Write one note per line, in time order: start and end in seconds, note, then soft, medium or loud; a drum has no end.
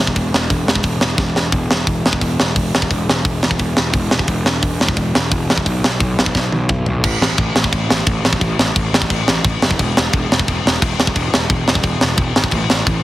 0.00 0.13 E1 medium
0.07 kick medium
0.16 0.30 E1 medium
0.16 kick medium
0.16 open hi-hat medium
0.33 0.47 E1 medium
0.33 snare loud
0.50 0.64 E1 medium
0.50 kick medium
0.50 open hi-hat soft
0.66 0.81 E1 medium
0.66 snare medium
0.75 kick medium
0.83 0.99 E1 medium
0.83 kick medium
0.83 open hi-hat medium
1.01 1.17 E1 medium
1.01 snare loud
1.18 1.33 E1 medium
1.18 kick loud
1.18 snare medium
1.36 1.50 E1 medium
1.36 snare medium
1.52 1.67 E1 medium
1.52 kick loud
1.52 open hi-hat medium
1.71 1.86 E1 medium
1.71 snare loud
1.87 2.02 E1 medium
1.87 kick loud
1.87 open hi-hat medium
2.06 2.20 E1 medium
2.06 snare loud
2.13 kick medium
2.21 2.36 E1 medium
2.21 kick medium
2.21 open hi-hat medium
2.40 2.54 E1 medium
2.40 snare loud
2.56 2.71 E1 medium
2.56 kick loud
2.56 open hi-hat medium
2.75 2.89 E1 medium
2.75 snare loud
2.82 kick medium
2.90 3.05 E1 medium
2.90 kick medium
2.90 open hi-hat medium
3.09 3.23 E1 medium
3.09 snare loud
3.25 3.39 E1 medium
3.25 kick loud
3.25 open hi-hat medium
3.43 3.57 E1 medium
3.43 snare loud
3.51 kick medium
3.59 3.74 E1 medium
3.59 kick medium
3.59 open hi-hat medium
3.77 3.91 E1 medium
3.77 snare loud
3.93 4.08 E1 medium
3.93 kick loud
3.93 open hi-hat medium
4.11 4.27 E1 medium
4.11 snare loud
4.19 kick medium
4.28 4.43 E1 medium
4.28 kick medium
4.28 open hi-hat medium
4.46 4.60 E1 medium
4.46 snare loud
4.63 4.77 E1 medium
4.63 kick medium
4.63 open hi-hat medium
4.80 4.95 E1 medium
4.80 snare medium
4.88 kick medium
4.96 5.12 E1 medium
4.96 kick medium
4.96 open hi-hat soft
5.15 5.30 E1 medium
5.15 snare loud
5.31 5.47 E1 medium
5.31 kick loud
5.31 open hi-hat medium
5.49 5.64 E1 medium
5.49 snare loud
5.58 kick medium
5.66 5.81 B1 medium
5.66 kick medium
5.66 open hi-hat medium
5.84 5.99 B1 medium
5.84 snare loud
6.00 6.15 B1 medium
6.00 kick loud
6.00 open hi-hat soft
6.18 6.33 B1 medium
6.18 snare loud
6.26 kick medium
6.35 6.50 B1 medium
6.35 kick medium
6.35 snare medium
6.53 6.68 B1 medium
6.53 high tom medium
6.69 6.84 B1 medium
6.69 kick loud
6.69 mid tom medium
6.86 7.04 B1 medium
6.86 floor tom medium
7.04 7.15 A1 loud
7.04 kick loud
7.04 crash loud
7.04 crash medium
7.21 7.33 A1 medium
7.21 snare loud
7.38 7.49 A1 medium
7.38 kick loud
7.38 crash medium
7.56 7.67 A1 medium
7.56 snare loud
7.64 kick medium
7.73 7.84 A1 medium
7.73 kick medium
7.73 crash medium
7.90 8.01 A1 loud
7.90 snare loud
8.06 8.18 A1 loud
8.06 kick loud
8.06 crash medium
8.25 8.36 A1 loud
8.25 snare loud
8.33 kick medium
8.41 8.52 A1 loud
8.41 kick loud
8.41 crash medium
8.59 8.70 A1 medium
8.59 snare loud
8.76 8.87 A1 medium
8.76 kick loud
8.76 crash medium
8.93 9.04 A1 loud
8.93 snare loud
9.02 kick medium
9.10 9.22 A1 medium
9.10 kick loud
9.10 crash medium
9.28 9.39 A1 loud
9.28 snare loud
9.44 9.56 A1 loud
9.44 kick loud
9.44 crash medium
9.62 9.73 F#1 medium
9.62 snare loud
9.71 kick medium
9.79 9.91 E1 loud
9.79 kick loud
9.79 crash medium
9.97 10.08 E1 loud
9.97 snare loud
10.13 10.24 E1 loud
10.13 kick loud
10.13 crash medium
10.32 10.43 E1 loud
10.32 snare loud
10.39 kick medium
10.48 10.60 E1 medium
10.48 kick loud
10.48 crash medium
10.65 10.76 E1 medium
10.65 snare loud
10.82 10.93 E1 medium
10.82 kick loud
10.82 crash medium
11.00 11.11 E1 medium
11.00 snare loud
11.07 kick loud
11.16 11.28 E1 loud
11.16 kick loud
11.16 crash medium
11.34 11.46 E1 medium
11.34 snare loud
11.50 11.61 E1 medium
11.50 kick loud
11.50 crash medium
11.67 11.79 E1 medium
11.67 snare loud
11.75 kick medium
11.83 11.95 E1 medium
11.83 kick loud
11.83 crash medium
12.01 12.13 E1 loud
12.01 snare loud
12.17 12.30 E1 medium
12.17 kick loud
12.17 crash medium
12.36 12.47 G#1 medium
12.36 snare loud
12.44 kick medium
12.51 12.64 A1 medium
12.51 kick loud
12.51 crash medium
12.70 12.82 A1 medium
12.70 snare loud
12.86 12.98 A1 medium
12.86 kick loud
12.86 crash medium